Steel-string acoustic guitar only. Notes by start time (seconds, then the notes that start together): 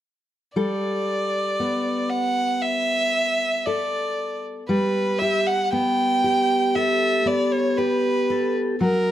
0.56 G3 A4
1.60 B3
3.67 A4
4.69 G3
5.22 G4
5.73 B3
6.24 G4
6.76 A4
7.26 B3
7.78 G4
8.30 A4
8.81 F#3